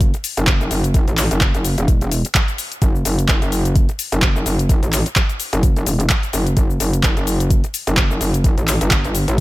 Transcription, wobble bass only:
Already playing: F#1
0.37 F#1
0.71 F#1
1.08 A1
1.31 F#1
1.55 F#1
1.78 E1
2.82 F#1
3.05 F#1
3.42 F#1
4.12 F#1
4.46 F#1
4.83 A1
5.53 F#1
5.87 E1
6.33 F#1
6.57 F#1
6.80 F#1
7.17 F#1
7.87 F#1
8.21 F#1
8.58 A1
8.81 G1
9.28 A1

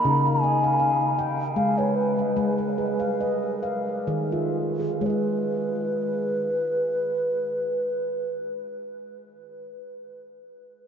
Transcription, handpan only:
Already playing: D#5
0.05 C#3 D#4
0.27 F5
0.44 D#5
0.64 F5
0.80 F5
1.19 G5
1.56 G#3
1.79 B4
2.19 D#5
2.36 G#3
2.58 B4
2.78 G#4
3.00 F5
3.20 D#5
3.63 F5
4.07 D#3 G#4
4.32 F4
4.79 G#4
5.01 G#3
5.06 G#4

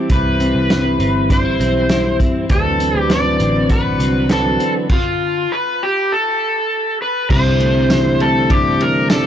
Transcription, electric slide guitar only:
0.12 B4
1.32 C5
2.52 A4
2.99 G4
3.11 D5
3.72 B4
4.32 A4
4.92 F4
5.52 B4
5.83 G4
6.12 A4
7.02 B4
7.31 C5
8.22 A4
8.51 G4
8.82 A#4
9.11 A4

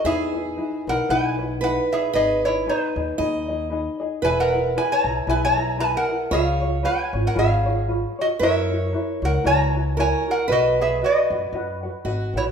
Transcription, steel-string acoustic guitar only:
0.05 G#4
1.61 B4
2.13 B4
3.18 D#5
4.22 B4
6.31 C#5
8.39 C#5
9.41 B4
9.97 A#4
10.48 B4
12.05 F#4

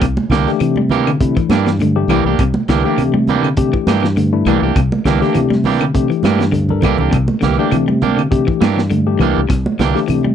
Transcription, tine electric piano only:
0.48 E3 A3 D4 G4
1.21 E3 A3 D4 E4
1.96 E3 A3 D4 G4
2.84 E3 A3 D4 G4
3.57 E3 A3 D4 G4
4.33 E3 A3 D4 E4
5.21 E3 A3 D4 G4
5.94 E3 A3 D4 G4
6.70 E3 D4 A4 A#4
7.59 E3 A3 D4 G4
8.31 E3 A3 D4 G4
9.07 E3 A3 D4 G4
9.95 E3 A3 D4 G4

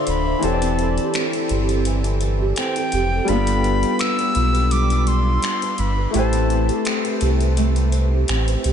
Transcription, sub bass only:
0.07 D1
0.43 E1
1.50 G1
2.93 F1
3.28 G1
4.36 B1
5.79 G1
6.14 A1
7.21 C2
8.29 A1
8.65 C2

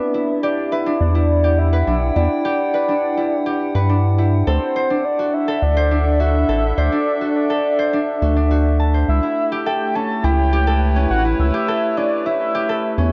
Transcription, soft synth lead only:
Already playing: B4
0.43 D5
0.72 E5
1.01 D5
1.58 E5
2.16 D5
2.74 D5
4.47 C5
5.05 D5
5.34 E5
5.62 D5
6.20 E5
6.78 D5
7.35 D5
9.09 E5
9.66 G5
9.95 A5
10.24 G5
11.10 F#5
11.39 E5
11.97 D5
12.26 E5

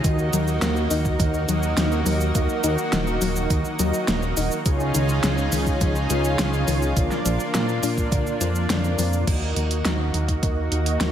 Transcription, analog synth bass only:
0.04 D#2
0.33 D#2
0.62 D#2
0.91 D#2
1.20 D#2
1.48 D#2
1.77 D#2
2.06 D#2
2.35 D#2
2.64 D#2
2.93 D#1
3.22 D#1
3.50 D#2
3.79 D#2
4.08 D#1
4.37 D#1
4.66 C#2
4.95 C#2
5.23 C#2
5.52 C#2
5.81 C#2
6.10 C#2
6.39 C#2
6.68 C#2
6.97 A#1
7.25 A#1
7.54 A#2
7.83 A#2
8.12 A#1
8.41 F2
8.70 F2
8.99 F2
9.27 D#2
9.56 D#2
9.85 D#2
10.14 D#2
10.43 D#2
10.72 D#2
11.00 D#2

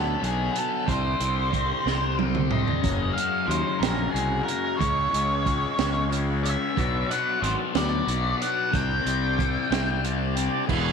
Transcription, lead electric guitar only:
Already playing: A4
0.24 G#4
0.58 A4
0.88 C5
2.51 D#5
3.13 F5
3.47 C5
3.79 A#4
4.11 G#4
4.43 A#4
4.77 C#5
6.43 E5
7.11 F#5
7.42 C5
7.76 D5
8.42 F#5
8.75 G5

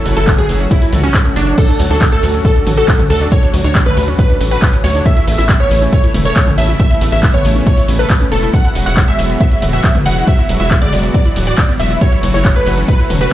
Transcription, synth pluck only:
0.17 A4
0.38 G#4
0.71 E4
1.04 C#4
1.36 D4
1.58 A4
1.91 A4
2.12 A4
2.45 A4
2.77 A4
3.10 A4
3.32 C#5
3.64 C#5
3.86 B4
4.19 B4
4.51 B4
4.84 C#5
5.06 E5
5.38 E5
5.60 C#5
5.93 C#5
6.25 C#5
6.58 E5
6.80 E5
7.12 E5
7.34 C#5
7.67 C#5
7.99 B4
8.32 A4
8.54 F#5
8.86 F#5
9.08 E5
9.40 E5
9.73 E5
10.06 F#5
10.27 E5
10.60 E5
10.82 D5
11.14 D5
11.47 D5
11.80 E5
12.01 C#5
12.34 C#5
12.56 B4
12.88 B4
13.21 B4

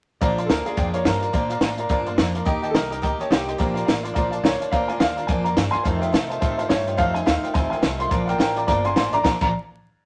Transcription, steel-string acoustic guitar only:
0.21 A#2 F3 A#3 D4 F4
0.39 A#3 D4 F4
0.50 F3 A#3 D4 F4
0.67 A#3 D4 F4
0.77 A#2 F3 A#3 D4 F4
0.94 A#3 D4 F4
1.05 F3 A#3 D4 F4
1.20 A#3 D4 F4
1.33 A#2 F3 A#3 D4 F4
1.49 A#3 D4 F4
1.61 F3 A#3 D4 F4
1.78 A#3 D4 F4
1.89 A#2 F3 A#3 D4 F4
2.06 A#3 D4 F4
2.18 F3 A#3 D4 F4
2.35 A#3 D4 F4
2.45 D#3 A#3 D#4 G4
2.62 A#3 D#4 G4
2.75 D#3 A#3 D#4 G4
2.90 A#3 D#4 G4
3.02 D#3 A#3 D#4 G4
3.19 A#3 D#4 G4
3.31 D#3 A#3 D#4 G4
3.48 A#3 D#4 G4
3.58 A#2 F3 A#3 D4 F4
3.75 A#3 D4 F4
3.87 F3 A#3 D4 F4
4.04 A#3 D4 F4
4.15 A#2 F3 A#3 D4 F4
4.32 A#3 D4 F4
4.44 F3 A#3 D4 F4
4.61 A#3 D4 F4
4.73 A#2 F3 A#3 D4 F4
4.90 A#3 D4 F4
5.01 F3 A#3 D4 F4
5.18 A#3 D4 F4
5.29 A#2 F3 A#3 D4 F4
5.46 A#3 D4 F4
5.57 F3 A#3 D4 F4
5.74 A#3 D4 F4
5.85 F2 C3 D#3 A3 D#4 F4
6.02 D#3 A3 D#4 F4
6.13 D#3 A3 D#4 F4
6.30 D#3 A3 D#4 F4
6.42 F2 C3 D#3 A3 D#4 F4
6.60 D#3 A3 D#4 F4
6.70 D#3 A3 D#4 F4
6.87 D#3 A3 D#4 F4
6.97 F2 C3 D#3 A3 D#4 F4
7.15 D#3 A3 D#4 F4
7.26 D#3 A3 D#4 F4
7.43 D#3 A3 D#4 F4
7.54 F2 C3 D#3 A3 D#4 F4
7.72 D#3 A3 D#4 F4
7.82 D#3 A3 D#4 F4
7.99 D#3 A3 D#4 F4
8.11 A#2 F3 A#3 D4 F4
8.28 A#3 D4 F4
8.39 F3 A#3 D4 F4
8.56 A#3 D4 F4
8.68 A#2 F3 A#3 D4 F4
8.84 A#3 D4 F4
8.96 F3 A#3 D4 F4
9.12 A#3 D4 F4
9.24 A#2 F3 A#3 D4 F4
9.41 A#2 F3 A#3 D4 F4

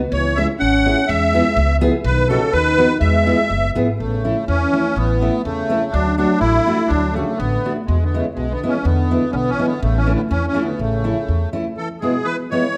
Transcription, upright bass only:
0.12 C#2
0.61 G#1
1.09 E2
1.57 C#2
2.04 B1
2.53 D#2
3.01 E2
3.50 F#1
3.76 G#1
4.00 A1
4.48 E2
4.96 A1
5.45 E2
5.94 D2
6.41 A1
6.90 D2
7.40 A1
7.88 E2
8.37 B1
8.85 E2
9.33 B1
9.83 A1
10.31 E2
10.79 A1
11.29 E2

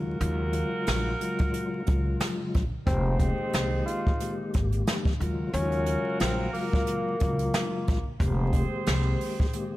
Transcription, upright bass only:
Already playing: D#2
0.21 D#2
0.87 A#1
1.88 C#2
2.55 A#1
2.87 F1
3.53 C2
4.55 G#1
5.20 D#2
5.54 D#2
6.20 A#1
7.21 C#2
7.88 A#1
8.20 F1
8.87 C2

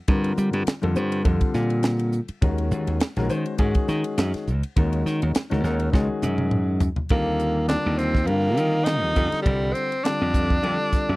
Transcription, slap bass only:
0.08 G2
0.38 G3
0.53 G2
0.67 muted slap bass stroke
0.83 F2
0.96 G2
1.25 F2
1.54 A#2
2.29 muted slap bass stroke
2.42 D#2
2.71 D#2
2.87 D#2
3.16 A#1
3.29 D#3
3.59 G#2
3.88 D#3
4.18 F#2
4.34 muted slap bass stroke
4.47 C#2
4.77 D#2
5.06 D#3
5.22 D#2
5.35 muted slap bass stroke
5.52 C#2
5.64 D#2
5.93 C#2
6.23 F#2
6.98 muted slap bass stroke
7.11 D#2
7.86 D#2
8.29 G2
8.58 D#3
9.03 D#2
9.16 F2
9.33 muted slap bass stroke
9.46 C2
10.21 F2
10.63 F2
10.93 muted slap bass stroke
11.09 F#2

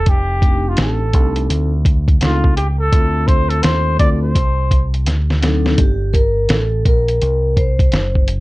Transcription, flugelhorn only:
Already playing: A4
0.09 G4
0.68 F4
0.81 A4
2.23 F4
2.56 G4
2.79 A4
3.27 C5
3.49 A4
3.62 C5
3.99 D5
4.22 C5

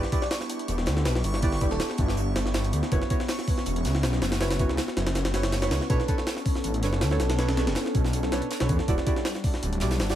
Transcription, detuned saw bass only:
0.68 E1
0.87 D2
1.05 B1
1.24 G1
1.71 D1
1.98 G1
2.36 G1
2.73 D2
2.92 F#1
3.66 E1
3.85 C#2
4.04 B1
4.22 F#1
4.69 C#2
4.97 F#1
5.34 F#1
5.71 C#2
5.90 B1
6.64 A1
6.83 F#1
7.02 D2
7.20 B1
7.67 F#1
7.95 B1
8.32 B1
8.61 B1
8.69 E2
8.88 E1
9.63 D1
9.82 B1
10.00 G1

